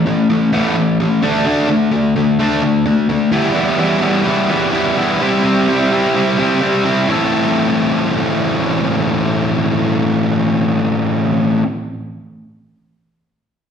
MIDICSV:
0, 0, Header, 1, 2, 480
1, 0, Start_track
1, 0, Key_signature, 0, "minor"
1, 0, Tempo, 470219
1, 1492, Time_signature, 4, 2, 24, 8
1, 13990, End_track
2, 0, Start_track
2, 0, Title_t, "Distorted electric guitar"
2, 0, Program_c, 0, 30
2, 62, Note_on_c, 0, 52, 76
2, 67, Note_on_c, 0, 57, 92
2, 276, Note_off_c, 0, 52, 0
2, 279, Note_off_c, 0, 57, 0
2, 305, Note_on_c, 0, 52, 67
2, 307, Note_on_c, 0, 57, 81
2, 517, Note_off_c, 0, 52, 0
2, 518, Note_off_c, 0, 57, 0
2, 536, Note_on_c, 0, 52, 80
2, 540, Note_on_c, 0, 57, 101
2, 544, Note_on_c, 0, 59, 97
2, 761, Note_off_c, 0, 52, 0
2, 763, Note_off_c, 0, 57, 0
2, 765, Note_off_c, 0, 59, 0
2, 774, Note_on_c, 0, 57, 71
2, 775, Note_on_c, 0, 52, 76
2, 990, Note_off_c, 0, 57, 0
2, 991, Note_off_c, 0, 52, 0
2, 1020, Note_on_c, 0, 52, 73
2, 1023, Note_on_c, 0, 57, 74
2, 1232, Note_off_c, 0, 52, 0
2, 1234, Note_off_c, 0, 57, 0
2, 1245, Note_on_c, 0, 50, 92
2, 1253, Note_on_c, 0, 57, 102
2, 1258, Note_on_c, 0, 62, 102
2, 1474, Note_off_c, 0, 50, 0
2, 1478, Note_off_c, 0, 57, 0
2, 1480, Note_off_c, 0, 62, 0
2, 1485, Note_on_c, 0, 50, 95
2, 1492, Note_on_c, 0, 57, 89
2, 1499, Note_on_c, 0, 62, 100
2, 1704, Note_off_c, 0, 50, 0
2, 1713, Note_off_c, 0, 57, 0
2, 1716, Note_on_c, 0, 50, 74
2, 1720, Note_off_c, 0, 62, 0
2, 1725, Note_on_c, 0, 57, 81
2, 1938, Note_off_c, 0, 50, 0
2, 1943, Note_off_c, 0, 57, 0
2, 1958, Note_on_c, 0, 50, 77
2, 1961, Note_on_c, 0, 57, 91
2, 2178, Note_off_c, 0, 50, 0
2, 2180, Note_off_c, 0, 57, 0
2, 2202, Note_on_c, 0, 50, 64
2, 2206, Note_on_c, 0, 57, 85
2, 2420, Note_off_c, 0, 50, 0
2, 2422, Note_off_c, 0, 57, 0
2, 2440, Note_on_c, 0, 50, 90
2, 2443, Note_on_c, 0, 57, 90
2, 2450, Note_on_c, 0, 62, 94
2, 2667, Note_off_c, 0, 50, 0
2, 2667, Note_off_c, 0, 57, 0
2, 2673, Note_off_c, 0, 62, 0
2, 2678, Note_on_c, 0, 50, 69
2, 2679, Note_on_c, 0, 57, 74
2, 2896, Note_off_c, 0, 50, 0
2, 2897, Note_off_c, 0, 57, 0
2, 2915, Note_on_c, 0, 50, 80
2, 2917, Note_on_c, 0, 57, 82
2, 3135, Note_off_c, 0, 50, 0
2, 3135, Note_off_c, 0, 57, 0
2, 3156, Note_on_c, 0, 50, 75
2, 3160, Note_on_c, 0, 57, 81
2, 3375, Note_off_c, 0, 50, 0
2, 3377, Note_off_c, 0, 57, 0
2, 3383, Note_on_c, 0, 52, 88
2, 3388, Note_on_c, 0, 55, 88
2, 3394, Note_on_c, 0, 59, 101
2, 3399, Note_on_c, 0, 64, 89
2, 3619, Note_off_c, 0, 52, 0
2, 3622, Note_off_c, 0, 55, 0
2, 3622, Note_off_c, 0, 59, 0
2, 3623, Note_on_c, 0, 52, 67
2, 3626, Note_on_c, 0, 55, 72
2, 3632, Note_off_c, 0, 64, 0
2, 3634, Note_on_c, 0, 59, 79
2, 3636, Note_on_c, 0, 64, 75
2, 3859, Note_off_c, 0, 52, 0
2, 3860, Note_off_c, 0, 59, 0
2, 3863, Note_on_c, 0, 52, 72
2, 3864, Note_off_c, 0, 55, 0
2, 3869, Note_on_c, 0, 55, 85
2, 3873, Note_on_c, 0, 59, 85
2, 3876, Note_off_c, 0, 64, 0
2, 3880, Note_on_c, 0, 64, 92
2, 4107, Note_off_c, 0, 52, 0
2, 4108, Note_off_c, 0, 55, 0
2, 4108, Note_off_c, 0, 59, 0
2, 4111, Note_on_c, 0, 52, 72
2, 4112, Note_on_c, 0, 55, 86
2, 4118, Note_off_c, 0, 64, 0
2, 4120, Note_on_c, 0, 59, 83
2, 4122, Note_on_c, 0, 64, 79
2, 4332, Note_off_c, 0, 55, 0
2, 4335, Note_off_c, 0, 52, 0
2, 4336, Note_off_c, 0, 59, 0
2, 4339, Note_on_c, 0, 52, 84
2, 4344, Note_on_c, 0, 55, 88
2, 4349, Note_on_c, 0, 59, 90
2, 4351, Note_off_c, 0, 64, 0
2, 4355, Note_on_c, 0, 64, 94
2, 4582, Note_off_c, 0, 55, 0
2, 4584, Note_off_c, 0, 52, 0
2, 4584, Note_off_c, 0, 59, 0
2, 4588, Note_on_c, 0, 52, 71
2, 4595, Note_on_c, 0, 55, 68
2, 4597, Note_on_c, 0, 59, 75
2, 4599, Note_off_c, 0, 64, 0
2, 4604, Note_on_c, 0, 64, 81
2, 4819, Note_off_c, 0, 55, 0
2, 4823, Note_off_c, 0, 52, 0
2, 4827, Note_on_c, 0, 52, 73
2, 4828, Note_off_c, 0, 59, 0
2, 4831, Note_on_c, 0, 55, 68
2, 4837, Note_off_c, 0, 64, 0
2, 4840, Note_on_c, 0, 59, 80
2, 4841, Note_on_c, 0, 64, 78
2, 5064, Note_off_c, 0, 52, 0
2, 5064, Note_off_c, 0, 55, 0
2, 5069, Note_on_c, 0, 52, 68
2, 5071, Note_off_c, 0, 59, 0
2, 5076, Note_on_c, 0, 55, 80
2, 5079, Note_off_c, 0, 64, 0
2, 5083, Note_on_c, 0, 59, 75
2, 5083, Note_on_c, 0, 64, 92
2, 5303, Note_off_c, 0, 55, 0
2, 5306, Note_off_c, 0, 59, 0
2, 5307, Note_off_c, 0, 52, 0
2, 5311, Note_on_c, 0, 48, 76
2, 5319, Note_on_c, 0, 55, 90
2, 5320, Note_on_c, 0, 60, 91
2, 5322, Note_off_c, 0, 64, 0
2, 5326, Note_on_c, 0, 64, 93
2, 5534, Note_off_c, 0, 48, 0
2, 5541, Note_off_c, 0, 55, 0
2, 5546, Note_off_c, 0, 60, 0
2, 5546, Note_on_c, 0, 48, 67
2, 5550, Note_off_c, 0, 64, 0
2, 5553, Note_on_c, 0, 55, 69
2, 5558, Note_on_c, 0, 60, 80
2, 5562, Note_on_c, 0, 64, 69
2, 5786, Note_off_c, 0, 48, 0
2, 5794, Note_off_c, 0, 55, 0
2, 5797, Note_off_c, 0, 60, 0
2, 5798, Note_on_c, 0, 48, 76
2, 5802, Note_off_c, 0, 64, 0
2, 5807, Note_on_c, 0, 55, 82
2, 5809, Note_on_c, 0, 60, 81
2, 5814, Note_on_c, 0, 64, 85
2, 6021, Note_off_c, 0, 48, 0
2, 6026, Note_off_c, 0, 55, 0
2, 6033, Note_on_c, 0, 48, 67
2, 6034, Note_off_c, 0, 60, 0
2, 6038, Note_off_c, 0, 64, 0
2, 6038, Note_on_c, 0, 55, 65
2, 6047, Note_on_c, 0, 60, 65
2, 6050, Note_on_c, 0, 64, 77
2, 6261, Note_off_c, 0, 48, 0
2, 6268, Note_off_c, 0, 55, 0
2, 6271, Note_off_c, 0, 60, 0
2, 6273, Note_on_c, 0, 48, 75
2, 6278, Note_off_c, 0, 64, 0
2, 6280, Note_on_c, 0, 55, 78
2, 6283, Note_on_c, 0, 60, 85
2, 6290, Note_on_c, 0, 64, 98
2, 6498, Note_off_c, 0, 48, 0
2, 6505, Note_off_c, 0, 55, 0
2, 6510, Note_on_c, 0, 48, 61
2, 6511, Note_off_c, 0, 60, 0
2, 6516, Note_off_c, 0, 64, 0
2, 6517, Note_on_c, 0, 55, 72
2, 6524, Note_on_c, 0, 60, 77
2, 6528, Note_on_c, 0, 64, 75
2, 6742, Note_off_c, 0, 48, 0
2, 6747, Note_off_c, 0, 55, 0
2, 6753, Note_off_c, 0, 60, 0
2, 6754, Note_on_c, 0, 48, 73
2, 6756, Note_off_c, 0, 64, 0
2, 6760, Note_on_c, 0, 55, 78
2, 6766, Note_on_c, 0, 60, 78
2, 6768, Note_on_c, 0, 64, 68
2, 6977, Note_off_c, 0, 48, 0
2, 6987, Note_off_c, 0, 60, 0
2, 6988, Note_off_c, 0, 55, 0
2, 6989, Note_on_c, 0, 48, 73
2, 6992, Note_off_c, 0, 64, 0
2, 7000, Note_on_c, 0, 55, 76
2, 7000, Note_on_c, 0, 60, 83
2, 7005, Note_on_c, 0, 64, 88
2, 7221, Note_off_c, 0, 48, 0
2, 7224, Note_on_c, 0, 45, 78
2, 7226, Note_off_c, 0, 55, 0
2, 7226, Note_off_c, 0, 60, 0
2, 7228, Note_off_c, 0, 64, 0
2, 7233, Note_on_c, 0, 52, 77
2, 7241, Note_on_c, 0, 57, 75
2, 7250, Note_on_c, 0, 60, 82
2, 7257, Note_on_c, 0, 64, 81
2, 7268, Note_on_c, 0, 69, 85
2, 11869, Note_off_c, 0, 45, 0
2, 11878, Note_off_c, 0, 52, 0
2, 11886, Note_off_c, 0, 57, 0
2, 11895, Note_off_c, 0, 60, 0
2, 11902, Note_off_c, 0, 64, 0
2, 11913, Note_off_c, 0, 69, 0
2, 13990, End_track
0, 0, End_of_file